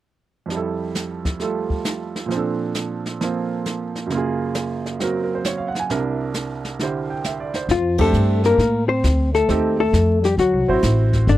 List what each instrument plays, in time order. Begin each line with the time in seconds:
0.46 grand piano F2 F3
0.50 grand piano G3, brush sweep, snare
0.54 grand piano E4 A4
0.95 snare, hi-hat pedal
1.25 kick, snare
1.40 grand piano G3 A3 F4 A4, brush sweep, snare
1.70 kick
1.84 snare, hi-hat pedal
2.16 snare
2.26 grand piano A#2 F3
2.30 grand piano C4 D4, brush sweep, snare
2.37 grand piano A4
2.75 snare, hi-hat pedal
3.06 snare
3.21 grand piano F3 A#3 C4 F4, brush sweep, snare
3.66 snare, hi-hat pedal
3.95 snare
4.06 grand piano F#2 C#3, brush sweep, snare
4.12 grand piano A#3 F4
4.17 grand piano G#4
4.54 snare, hi-hat pedal
4.86 snare
5.00 grand piano F#3 C4 F#4 A#4, brush sweep, snare
5.24 grand piano A#4
5.35 grand piano C5
5.44 grand piano C#5, snare, hi-hat pedal
5.58 grand piano F5
5.68 grand piano F#5
5.75 snare
5.80 grand piano G#5
5.90 grand piano C2 C3 D4 E4 A#4, brush sweep, snare
6.34 snare, hi-hat pedal
6.65 snare
6.79 grand piano D3 E4 G4, brush sweep, snare
6.83 grand piano C5
7.10 grand piano G5
7.24 grand piano E5, snare, hi-hat pedal
7.40 grand piano D5
7.54 grand piano C5, snare
7.69 upright bass F2, trombone F3, hollow-body jazz guitar F4, brush sweep, snare
7.98 trombone A3, grand piano C4 D4 G4 A4, hollow-body jazz guitar A4, kick, ride
8.13 upright bass G2, hi-hat pedal
8.44 trombone A#3, hollow-body jazz guitar A#4, snare
8.58 upright bass A2, brush sweep, snare
8.88 trombone C4, hollow-body jazz guitar C5
9.03 upright bass D2, snare, hi-hat pedal
9.33 trombone A3, hollow-body jazz guitar A4, snare
9.49 upright bass D#2, grand piano C4 D#4 G4 A4, brush sweep, snare
9.77 trombone A3, hollow-body jazz guitar A4
9.93 upright bass F2, snare, hi-hat pedal
10.22 trombone G3, hollow-body jazz guitar G4, snare
10.37 upright bass D2, trombone F#3, hollow-body jazz guitar F#4, brush sweep, snare
10.53 upright bass C2
10.68 upright bass A1, grand piano C4 E4 F#4 C5
10.82 upright bass A1, snare, hi-hat pedal
11.13 kick, snare
11.27 upright bass G1, trombone D3, hollow-body jazz guitar D4, brush sweep, snare